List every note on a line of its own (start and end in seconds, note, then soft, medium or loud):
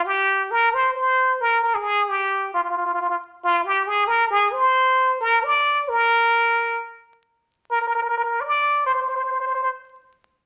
0.05 0.52 G4 medium
0.51 0.75 A#4 medium
0.74 0.95 C5 medium
0.95 1.42 C5 medium
1.41 1.63 A#4 medium
1.64 1.76 A#4 medium
1.75 2.10 G#4 medium
2.08 2.53 G4 medium
2.53 2.61 F4 medium
2.63 2.68 F4 soft
2.69 2.76 F4 medium
2.77 2.84 F4 soft
2.85 2.92 F4 soft
2.93 2.99 F4 soft
3.01 3.07 F4 medium
3.09 3.15 F4 soft
3.44 3.67 F4 medium
3.65 3.88 G4 medium
3.87 4.09 G#4 medium
4.07 4.30 A#4 medium
4.30 4.54 G#4 medium
4.52 5.20 C5 medium
5.20 5.45 A#4 medium
5.43 5.90 D5 medium
5.89 6.80 A#4 medium
7.71 7.79 A#4 medium
7.81 7.86 A#4 soft
7.87 7.94 A#4 medium
7.95 8.01 A#4 medium
8.02 8.08 A#4 medium
8.09 8.16 A#4 medium
8.17 8.23 A#4 medium
8.24 8.42 A#4 medium
8.40 8.85 D5 medium
8.86 8.93 C5 medium
8.94 9.00 C5 medium
9.01 9.07 C5 soft
9.08 9.15 C5 soft
9.16 9.22 C5 medium
9.24 9.30 C5 soft
9.31 9.38 C5 soft
9.40 9.46 C5 soft
9.46 9.53 C5 medium
9.54 9.61 C5 soft
9.63 9.69 C5 medium